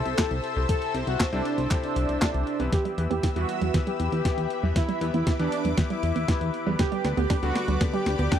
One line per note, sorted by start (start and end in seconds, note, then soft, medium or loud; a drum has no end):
0.00 0.15 C3 medium
0.00 0.15 C4 medium
0.00 0.15 E4 medium
0.00 0.15 A4 medium
0.00 0.59 A4 loud
0.00 0.15 C5 medium
0.00 2.68 C5 medium
0.00 2.68 E5 medium
0.00 2.68 A5 medium
0.00 2.69 E6 medium
0.06 0.15 C2 medium
0.06 closed hi-hat soft
0.18 0.53 C3 medium
0.18 0.53 C4 medium
0.18 0.53 E4 medium
0.18 0.53 A4 medium
0.18 0.53 C5 medium
0.18 kick loud
0.18 snare loud
0.18 clap medium
0.18 closed hi-hat medium
0.31 0.40 C2 medium
0.31 closed hi-hat soft
0.44 closed hi-hat soft
0.56 0.66 C2 medium
0.56 0.91 C3 medium
0.56 0.91 C4 medium
0.56 0.91 E4 medium
0.56 0.91 A4 medium
0.56 0.91 C5 medium
0.69 0.98 A4 loud
0.69 kick loud
0.69 closed hi-hat medium
0.82 closed hi-hat soft
0.94 1.04 C2 medium
0.94 1.30 C3 medium
0.94 1.30 C4 medium
0.94 1.30 E4 medium
0.94 1.30 A4 medium
0.94 1.30 C5 medium
0.94 closed hi-hat medium
1.07 1.16 C2 medium
1.07 1.26 F#4 medium
1.07 closed hi-hat soft
1.20 kick loud
1.20 snare loud
1.20 clap medium
1.20 closed hi-hat loud
1.33 1.42 C2 medium
1.33 1.68 C3 medium
1.33 1.68 C4 medium
1.33 1.71 D4 loud
1.33 1.68 E4 medium
1.33 1.68 A4 medium
1.33 1.68 C5 loud
1.33 closed hi-hat soft
1.45 closed hi-hat medium
1.58 1.67 C2 medium
1.58 closed hi-hat soft
1.71 2.19 C3 medium
1.71 2.19 C4 medium
1.71 2.19 E4 medium
1.71 2.19 A4 medium
1.71 2.19 C5 medium
1.71 kick loud
1.71 snare soft
1.71 clap medium
1.71 closed hi-hat medium
1.84 2.62 D4 loud
1.84 closed hi-hat soft
1.96 2.05 C2 medium
1.96 closed hi-hat medium
2.09 2.18 C2 medium
2.09 closed hi-hat soft
2.22 2.57 C3 medium
2.22 2.57 C4 medium
2.22 2.57 E4 medium
2.22 2.57 A4 medium
2.22 2.57 C5 medium
2.22 kick loud
2.22 snare loud
2.22 clap medium
2.22 closed hi-hat medium
2.34 2.44 C2 medium
2.34 closed hi-hat soft
2.47 closed hi-hat soft
2.60 2.69 C2 medium
2.60 2.95 E3 medium
2.60 2.95 B3 medium
2.60 2.95 E4 medium
2.60 2.95 G4 medium
2.60 2.95 B4 medium
2.60 closed hi-hat soft
2.72 2.85 E3 medium
2.72 3.01 G4 loud
2.72 8.39 B4 medium
2.72 6.75 E5 medium
2.72 6.75 B5 medium
2.72 4.74 E6 medium
2.72 kick loud
2.72 snare soft
2.72 closed hi-hat medium
2.85 2.94 G3 loud
2.85 closed hi-hat soft
2.98 3.07 E2 medium
2.98 3.33 E3 medium
2.98 3.33 B3 medium
2.98 3.33 E4 medium
2.98 3.33 G4 medium
2.98 3.33 B4 medium
2.98 closed hi-hat medium
3.10 3.20 E2 medium
3.10 3.16 B3 loud
3.10 3.30 G4 medium
3.10 closed hi-hat soft
3.23 3.32 E4 loud
3.23 kick loud
3.23 snare soft
3.23 closed hi-hat medium
3.36 3.45 E2 medium
3.36 3.48 E3 medium
3.36 3.71 E3 medium
3.36 3.71 G3 medium
3.36 3.71 B3 medium
3.36 3.71 E4 medium
3.36 3.74 F#4 loud
3.36 3.71 B4 loud
3.36 closed hi-hat soft
3.49 closed hi-hat medium
3.61 3.71 E2 medium
3.61 3.74 G3 loud
3.61 closed hi-hat soft
3.74 4.22 E3 medium
3.74 3.86 E3 loud
3.74 4.22 B3 medium
3.74 4.22 E4 medium
3.74 4.22 G4 medium
3.74 4.22 B4 medium
3.74 kick loud
3.74 snare medium
3.74 closed hi-hat loud
3.87 3.96 G3 loud
3.87 4.66 G4 loud
3.87 closed hi-hat soft
4.00 4.09 E2 medium
4.00 closed hi-hat medium
4.12 4.22 E2 medium
4.12 4.18 B3 loud
4.12 closed hi-hat soft
4.25 4.60 E3 medium
4.25 4.60 B3 medium
4.25 4.60 E4 medium
4.25 4.34 E4 loud
4.25 4.60 G4 medium
4.25 4.60 B4 medium
4.25 kick loud
4.25 snare medium
4.25 closed hi-hat medium
4.38 4.47 E2 medium
4.38 4.50 E3 medium
4.38 closed hi-hat soft
4.50 closed hi-hat soft
4.63 4.72 E2 medium
4.63 4.98 E3 medium
4.63 4.75 G3 loud
4.63 4.98 B3 medium
4.63 4.98 E4 medium
4.63 4.98 G4 medium
4.63 4.98 B4 medium
4.76 4.88 E3 loud
4.76 5.04 E4 loud
4.76 6.77 D6 medium
4.76 kick loud
4.76 snare medium
4.76 closed hi-hat medium
4.89 4.98 G3 loud
4.89 closed hi-hat soft
5.01 5.11 E2 medium
5.01 5.36 E3 medium
5.01 5.36 B3 medium
5.01 5.36 E4 medium
5.01 5.36 G4 medium
5.01 5.36 B4 medium
5.01 closed hi-hat medium
5.14 5.23 E2 medium
5.14 5.19 B3 loud
5.14 5.33 E4 medium
5.14 closed hi-hat soft
5.27 5.36 E4 loud
5.27 kick loud
5.27 snare medium
5.27 closed hi-hat medium
5.39 5.49 E2 medium
5.39 5.75 E3 medium
5.39 5.52 E3 medium
5.39 5.75 B3 medium
5.39 5.78 D4 loud
5.39 5.75 E4 medium
5.39 5.75 G4 medium
5.39 5.75 B4 loud
5.39 closed hi-hat soft
5.52 closed hi-hat medium
5.65 5.74 E2 medium
5.65 5.77 G3 loud
5.65 closed hi-hat soft
5.78 6.25 E3 medium
5.78 5.90 E3 loud
5.78 6.25 B3 medium
5.78 6.25 E4 medium
5.78 6.25 G4 medium
5.78 6.25 B4 medium
5.78 kick loud
5.78 snare medium
5.78 closed hi-hat medium
5.90 5.99 G3 loud
5.90 6.69 E4 loud
5.90 closed hi-hat soft
6.03 6.12 E2 medium
6.03 closed hi-hat medium
6.16 6.25 E2 medium
6.16 6.21 B3 loud
6.16 closed hi-hat soft
6.28 6.64 E3 medium
6.28 6.64 B3 medium
6.28 6.64 E4 medium
6.28 6.38 E4 loud
6.28 6.64 G4 medium
6.28 6.64 B4 medium
6.28 kick loud
6.28 snare medium
6.28 closed hi-hat medium
6.41 6.50 E2 medium
6.41 6.53 E3 medium
6.41 closed hi-hat soft
6.54 closed hi-hat soft
6.67 6.76 E2 medium
6.67 7.02 D3 medium
6.67 6.79 G3 loud
6.67 7.02 B3 medium
6.67 7.02 D4 medium
6.67 7.02 G4 medium
6.67 7.02 B4 medium
6.79 6.91 D3 loud
6.79 7.08 G4 loud
6.79 8.39 D5 medium
6.79 8.39 B5 medium
6.79 8.39 D6 medium
6.79 kick loud
6.79 snare medium
6.79 closed hi-hat medium
6.92 7.01 G3 loud
6.92 closed hi-hat soft
7.05 7.14 D2 medium
7.05 7.40 D3 medium
7.05 7.40 B3 medium
7.05 7.40 D4 medium
7.05 7.40 G4 medium
7.05 7.40 B4 medium
7.05 snare medium
7.05 closed hi-hat medium
7.17 7.27 D2 medium
7.17 7.23 B3 loud
7.17 7.36 G4 medium
7.17 closed hi-hat soft
7.30 7.39 D4 loud
7.30 kick loud
7.30 snare medium
7.30 closed hi-hat medium
7.42 7.52 D2 medium
7.42 7.55 D3 medium
7.42 7.78 D3 loud
7.42 7.78 G3 medium
7.42 7.78 B3 medium
7.42 7.78 D4 medium
7.42 7.81 F#4 loud
7.42 7.78 B4 loud
7.42 closed hi-hat soft
7.56 snare medium
7.56 closed hi-hat medium
7.68 7.77 D2 medium
7.68 7.80 G3 loud
7.68 closed hi-hat soft
7.81 7.93 D3 loud
7.81 8.29 D3 medium
7.81 8.29 B3 medium
7.81 8.29 D4 medium
7.81 8.29 G4 medium
7.81 8.29 B4 medium
7.81 kick loud
7.81 snare medium
7.81 closed hi-hat medium
7.94 8.03 G3 loud
7.94 8.39 G4 loud
7.94 closed hi-hat soft
8.06 8.16 D2 medium
8.06 snare medium
8.06 closed hi-hat medium
8.19 8.28 D2 medium
8.19 8.25 B3 loud
8.19 closed hi-hat soft
8.32 8.39 D3 medium
8.32 8.39 B3 medium
8.32 8.39 D4 medium
8.32 8.39 D4 loud
8.32 8.39 G4 medium
8.32 8.39 B4 medium
8.32 kick loud
8.32 snare medium
8.32 closed hi-hat medium